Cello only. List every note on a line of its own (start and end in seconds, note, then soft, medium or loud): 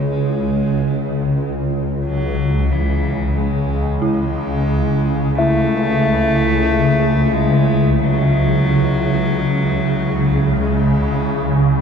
0.11 1.38 G#3 medium
2.05 2.74 F#3 medium
2.72 3.39 E3 medium
3.38 4.03 G#3 medium
4.03 5.37 G#3 loud
5.36 7.35 A3 loud
7.33 8.00 G#3 medium
7.99 10.59 F#3 medium
10.61 11.81 G#3 medium